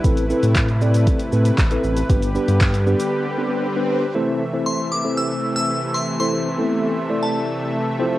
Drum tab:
HH |xx-xxx-xxx-xxx-x|xx-xxx-x--------|----------------|----------------|
SH |xxxxxxxxxxxxxxxx|xxxxxxxx--------|----------------|----------------|
CP |----x-------x---|----x-----------|----------------|----------------|
BD |o---o---o---o---|o---o-----------|----------------|----------------|